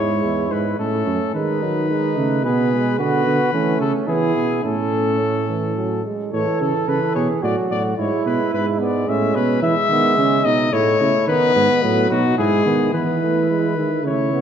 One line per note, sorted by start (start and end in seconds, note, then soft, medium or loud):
0.00 0.23 G#2 medium
0.00 0.75 G#3 medium
0.00 0.75 E4 medium
0.00 0.53 C#5 medium
0.24 0.53 E2 medium
0.51 0.79 G#2 medium
0.51 0.79 B4 medium
0.79 1.06 A2 medium
0.79 1.37 A3 medium
0.79 1.34 C#4 medium
0.79 1.34 A4 medium
1.07 1.20 F#2 medium
1.34 2.19 D#3 medium
1.34 1.65 G#3 medium
1.34 1.88 D#4 medium
1.34 2.43 B4 medium
1.63 1.90 F#3 medium
1.89 2.19 G#3 medium
1.89 2.46 D#4 medium
2.17 2.46 C#3 medium
2.17 2.45 A3 medium
2.44 2.99 B2 medium
2.44 2.72 B3 medium
2.44 2.98 G#4 medium
2.44 2.98 B4 medium
2.73 3.02 G#3 medium
2.99 3.26 D3 medium
2.99 3.53 B3 medium
2.99 3.52 F#4 medium
2.99 3.79 B4 medium
3.27 3.39 D3 medium
3.53 3.80 E3 medium
3.53 4.07 A3 medium
3.53 4.09 C#4 medium
3.81 3.93 C#3 medium
3.81 3.93 A4 medium
4.08 4.35 E3 medium
4.08 4.63 B3 medium
4.08 4.63 E4 medium
4.08 4.63 G#4 medium
4.36 4.63 B2 medium
4.63 6.02 A2 medium
4.63 4.77 A3 medium
4.63 6.02 C#4 medium
4.63 6.03 A4 medium
4.92 5.20 C#4 medium
5.20 5.48 A3 medium
5.49 5.76 E3 medium
5.77 6.04 F#3 medium
6.05 6.32 G#3 medium
6.32 6.46 A2 medium
6.32 6.84 E3 medium
6.32 7.17 A4 medium
6.32 6.59 C#5 medium
6.61 6.73 C#3 medium
6.61 6.90 A4 medium
6.88 7.00 C#3 medium
6.88 7.42 E3 medium
6.88 7.15 B4 medium
7.15 7.28 B2 medium
7.15 7.44 G#4 medium
7.15 7.28 C#5 medium
7.42 7.55 A2 medium
7.42 7.97 F#3 medium
7.42 7.97 F#4 medium
7.42 7.56 D5 medium
7.71 7.98 A2 medium
7.71 7.83 D5 medium
7.98 8.11 G#2 medium
7.98 8.53 G#3 medium
7.98 8.82 E4 medium
7.98 8.25 C#5 medium
8.26 8.38 B2 medium
8.26 8.53 B4 medium
8.54 9.07 G#2 medium
8.54 9.61 G#3 medium
8.54 8.66 B4 medium
8.80 9.07 B3 medium
8.80 9.10 D5 medium
9.08 9.35 A2 medium
9.08 9.61 C#4 medium
9.08 9.37 E5 medium
9.35 9.62 B2 medium
9.35 9.62 B4 medium
9.62 9.75 E3 medium
9.62 10.71 G#3 medium
9.62 9.75 E4 medium
9.62 10.46 E5 loud
9.90 10.17 D#3 medium
9.90 10.17 B3 medium
10.17 10.45 C#3 medium
10.17 10.45 C#4 medium
10.45 10.72 B2 medium
10.45 10.72 D#4 medium
10.45 10.74 D#5 medium
10.73 11.00 A2 medium
10.73 11.27 A3 medium
10.73 11.00 E4 medium
10.73 11.28 C#5 loud
11.00 11.13 C#3 medium
11.00 11.29 E4 medium
11.28 11.55 D#3 medium
11.28 11.85 B3 medium
11.28 11.55 D#4 medium
11.28 12.09 B4 loud
11.55 11.68 G#2 medium
11.55 11.83 B3 medium
11.83 12.10 A2 medium
11.83 12.22 F#3 medium
11.83 12.10 B3 medium
12.11 12.38 B2 medium
12.11 12.37 D#4 medium
12.11 12.38 F#4 medium
12.38 12.65 G#2 medium
12.38 12.93 G#3 medium
12.38 12.65 E4 medium
12.38 12.93 G#4 loud
12.66 12.93 D#3 medium
12.66 12.93 B3 medium
12.94 13.79 E3 medium
12.94 13.20 B3 medium
12.94 14.01 E4 medium
12.94 14.01 B4 medium
13.22 13.49 A3 medium
13.50 13.77 G#3 medium
13.77 14.06 D#3 medium
13.77 13.90 G#3 medium
14.05 14.41 C#3 medium
14.05 14.33 A3 medium
14.05 14.41 E4 medium
14.05 14.41 C#5 medium
14.33 14.41 B3 medium